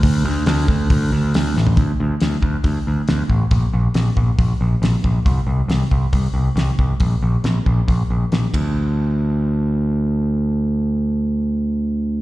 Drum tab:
RD |----------------|----------------|----------------|----------------|
HH |o---o---o---o---|o---o---o---o---|o---o---o---o---|o---o---o---o---|
SD |----o-------ooo-|----o-------o---|----o-------o---|----o-------o---|
FT |---------------o|----------------|----------------|----------------|
BD |o-----o-o-------|o-----o-o-----o-|o-----o-o-----o-|o-----o-o-----o-|

RD |--------------x-|----------------|----------------|
HH |o---o---o---o---|----------------|----------------|
SD |----o-------o---|----------------|----------------|
FT |----------------|----------------|----------------|
BD |o-----o-o-----o-|----------------|----------------|